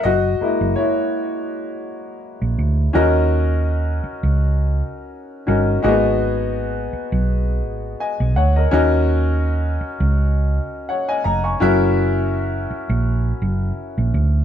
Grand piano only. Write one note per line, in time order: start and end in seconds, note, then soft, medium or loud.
0.04 0.74 F#4 medium
0.04 0.79 D#5 loud
0.41 2.90 G#3 medium
0.41 2.91 A#3 medium
0.41 0.77 E4 medium
0.76 2.55 E4 medium
0.76 2.54 C#5 medium
2.93 5.43 C#4 medium
2.93 5.43 D#4 medium
2.93 5.43 F#4 medium
2.93 5.44 A#4 medium
2.93 5.44 D#5 loud
5.47 5.83 C#4 medium
5.47 5.81 D#4 medium
5.47 5.82 F#4 medium
5.47 5.84 A#4 medium
5.47 5.83 D#5 medium
5.82 5.90 A#3 medium
5.82 8.68 D#4 medium
5.82 8.69 F#4 medium
5.82 8.69 G#4 medium
5.82 7.97 D#5 medium
5.89 8.71 B3 medium
8.00 8.35 D#5 medium
8.00 8.35 G#5 medium
8.36 8.55 C#5 medium
8.36 8.55 F#5 medium
8.56 8.72 A#4 medium
8.56 8.72 D#5 medium
8.71 11.57 C#4 medium
8.71 11.57 D#4 medium
8.71 11.57 F#4 medium
8.71 11.58 A#4 medium
8.71 10.86 D#5 loud
10.89 11.08 C#5 medium
10.89 11.08 F#5 medium
11.09 11.24 D#5 medium
11.09 11.24 G#5 medium
11.24 11.44 D#5 medium
11.24 11.43 A#5 medium
11.44 11.79 G#5 medium
11.44 11.79 C#6 medium
11.60 14.45 C#4 medium
11.60 14.45 E4 medium
11.60 14.45 F#4 medium
11.60 14.45 A#4 medium
11.60 14.45 E5 loud